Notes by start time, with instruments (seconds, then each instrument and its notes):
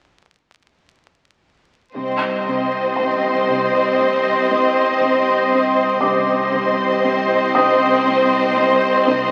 1.95 double bass section C2, sub bass C2, cello section C3, violin section C4 C5 D#5, ambient pad C5 D#5 C6
2.47 cello section C3
2.96 cello section C4, felt piano C6
3.48 cello section C3
4.00 cello section C4
4.51 cello section C4
5.01 cello section C3
5.53 cello section C3
6.01 double bass section C2, sub bass C2, cello section C3, violin section C4 C5 D#5, ambient pad C5 D#5 C6, felt piano D#5 D6
6.53 cello section C3
7.04 cello section C4
7.55 cello section C3, felt piano G5 D#6
8.05 cello section C4
8.56 cello section C4
9.07 cello section C3